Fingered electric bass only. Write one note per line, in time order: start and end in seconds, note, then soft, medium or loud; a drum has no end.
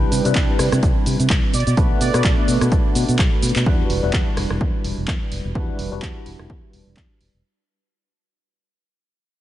0.12 0.20 C3 loud
0.25 0.32 C3 medium
0.36 0.44 C2 medium
0.59 0.68 C3 medium
0.72 0.79 C3 medium
0.83 0.91 C2 medium
1.06 1.15 C3 medium
1.20 1.26 C3 medium
1.30 1.38 C2 medium
1.54 1.62 B2 medium
1.67 1.73 B2 medium
1.77 1.90 B1 loud
1.91 muted fingered electric bass stroke soft
2.01 2.09 B2 loud
2.14 2.21 B2 medium
2.25 2.33 B1 medium
2.48 2.56 B2 medium
2.61 2.68 B2 medium
2.72 2.80 B1 medium
2.95 3.04 B2 loud
3.09 3.15 B2 loud
3.19 3.27 B1 loud
3.43 3.51 B2 medium
3.56 3.62 B2 medium
3.66 3.82 E2 medium
3.90 3.98 E1 loud
4.03 4.10 E1 medium
4.14 4.22 E2 medium
4.37 4.45 E1 medium
4.50 4.57 E1 medium
4.61 4.69 E2 medium
4.84 4.93 E1 medium
4.98 5.04 E1 medium
5.08 5.16 E2 medium
5.32 5.40 E1 medium
5.45 5.51 E1 medium
5.55 5.68 E2 loud
5.69 muted fingered electric bass stroke soft
5.79 5.87 E1 loud
5.92 5.99 E1 medium
6.03 6.11 E2 medium
6.26 6.35 E1 medium
6.39 6.46 E1 medium
6.73 6.82 E1 medium
6.87 6.93 E1 medium
6.97 7.05 E2 medium
7.21 7.29 E1 medium
7.34 7.40 E1 medium